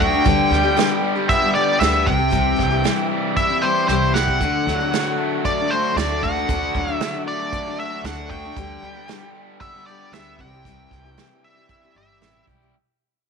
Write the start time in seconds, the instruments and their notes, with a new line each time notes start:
Already playing: upright bass D2, overdriven electric guitar A3 D4
0.00 steel-string acoustic guitar F#3 A3 D4 F#4, lead electric guitar G5, kick
0.13 steel-string acoustic guitar A3 D4 F#4
0.24 upright bass D2, steel-string acoustic guitar D3 G3 B3 G4, kick, closed hi-hat
0.50 upright bass D2, steel-string acoustic guitar D3 G3 B3 G4, snare
0.63 steel-string acoustic guitar G3 B3 G4
0.77 steel-string acoustic guitar D3 G3 B3 G4, snare, closed hi-hat
0.90 steel-string acoustic guitar G3 B3 G4
1.03 overdriven electric guitar G3
1.16 steel-string acoustic guitar G3 B3 G4
1.29 overdriven electric guitar B3, lead electric guitar E5, kick, closed hi-hat
1.42 steel-string acoustic guitar G3 B3 G4
1.55 steel-string acoustic guitar D3 G3 B3 G4, lead electric guitar D5
1.80 upright bass D2, steel-string acoustic guitar D3 G3 B3 G4, lead electric guitar E5, snare, closed hi-hat
2.06 upright bass C2, overdriven electric guitar C3, steel-string acoustic guitar E3 G3 C4 G4, lead electric guitar G5, kick
2.19 steel-string acoustic guitar G3 C4 G4
2.30 steel-string acoustic guitar C3 E3 G3 C4 G4, kick, closed hi-hat
2.56 upright bass C2, steel-string acoustic guitar E3 G3 C4 G4, kick, snare
2.70 steel-string acoustic guitar G3 C4 G4
2.84 steel-string acoustic guitar C3 E3 G3 C4 G4, snare, closed hi-hat
3.11 overdriven electric guitar G3
3.36 overdriven electric guitar E4, lead electric guitar E5, kick, closed hi-hat
3.49 steel-string acoustic guitar G3 C4 G4
3.62 steel-string acoustic guitar E3 G3 C4 G4, lead electric guitar C5
3.88 upright bass C2, steel-string acoustic guitar C3 E3 G3 C4 G4, overdriven electric guitar E4, lead electric guitar C5, snare
4.14 steel-string acoustic guitar E3 G3 C4 G4, lead electric guitar F#5, snare
4.28 steel-string acoustic guitar G3 C4 G4, kick
4.41 upright bass D2, steel-string acoustic guitar D3 A3 D4 F#4, kick, closed hi-hat
4.67 upright bass D2, steel-string acoustic guitar D3 A3 D4 F#4, overdriven electric guitar F#3, snare
4.80 steel-string acoustic guitar A3 D4 F#4
4.92 steel-string acoustic guitar D3 A3 D4 F#4, overdriven electric guitar F#3, snare, closed hi-hat
5.18 overdriven electric guitar A3
5.44 overdriven electric guitar D4, lead electric guitar D5, kick, closed hi-hat
5.59 steel-string acoustic guitar A3 D4 F#4
5.70 steel-string acoustic guitar D3 A3 D4 F#4, lead electric guitar C5
5.96 upright bass D2, steel-string acoustic guitar D3 A3 D4 F#4, lead electric guitar D5, snare, closed hi-hat
6.23 steel-string acoustic guitar D3 A3 D4 F#4, lead electric guitar F#5, kick
6.36 steel-string acoustic guitar A3 D4 F#4
6.49 upright bass D2, steel-string acoustic guitar D3 A3 D4 F#4, kick, closed hi-hat
6.75 upright bass D2, steel-string acoustic guitar D3 A3 D4 F#4, overdriven electric guitar F#3, kick
6.88 steel-string acoustic guitar A3 D4 F#4
6.93 lead electric guitar E5
7.00 steel-string acoustic guitar D3 A3 D4 F#4, overdriven electric guitar F#3, snare, closed hi-hat
7.14 steel-string acoustic guitar A3 D4 F#4
7.26 overdriven electric guitar A3, lead electric guitar D5
7.40 steel-string acoustic guitar A3 D4 F#4
7.53 overdriven electric guitar D4, kick, closed hi-hat
7.67 steel-string acoustic guitar A3 D4 F#4
7.79 steel-string acoustic guitar D3 A3 D4 F#4, lead electric guitar E5
8.04 upright bass D2, steel-string acoustic guitar D3 A3 D4 F#4, lead electric guitar F#5, snare, closed hi-hat
8.30 steel-string acoustic guitar D3 A3 D4 F#4, lead electric guitar G5, kick
8.44 steel-string acoustic guitar A3 D4 F#4
8.56 upright bass D2, steel-string acoustic guitar D3 G3 B3 G4, kick, closed hi-hat
8.82 upright bass D2, steel-string acoustic guitar D3 G3 B3 G4
8.96 steel-string acoustic guitar G3 B3 G4
9.08 steel-string acoustic guitar D3 G3 B3 G4, snare, closed hi-hat
9.21 steel-string acoustic guitar G3 B3 G4
9.35 overdriven electric guitar G3
9.61 overdriven electric guitar B3, lead electric guitar E5, kick, closed hi-hat
9.73 steel-string acoustic guitar G3 B3 G4
9.86 steel-string acoustic guitar D3 G3 B3 G4, lead electric guitar D5
10.12 upright bass D2, steel-string acoustic guitar D3 G3 B3 G4, lead electric guitar E5, snare, closed hi-hat
10.39 upright bass C2, overdriven electric guitar C3, steel-string acoustic guitar E3 G3 E4 G4, lead electric guitar G5, kick
10.53 steel-string acoustic guitar G3 E4 G4
10.65 steel-string acoustic guitar C3 E3 G3 E4 G4, kick, closed hi-hat
10.91 upright bass C2, steel-string acoustic guitar E3 G3 E4 G4, kick, snare
11.05 steel-string acoustic guitar G3 E4 G4
11.17 steel-string acoustic guitar C3 E3 G3 E4 G4, snare, closed hi-hat
11.30 steel-string acoustic guitar G3 E4 G4
11.44 overdriven electric guitar G3, lead electric guitar E5
11.57 steel-string acoustic guitar G3 E4 G4
11.69 overdriven electric guitar E4, kick, closed hi-hat
11.83 steel-string acoustic guitar G3 E4 G4
11.95 upright bass G1, steel-string acoustic guitar E3 G3 E4 G4, lead electric guitar E5
12.21 upright bass A1, steel-string acoustic guitar C3 E3 G3 E4 G4, snare, closed hi-hat
12.47 upright bass B1, steel-string acoustic guitar E3 G3 E4 G4, kick
12.61 steel-string acoustic guitar G3 E4 G4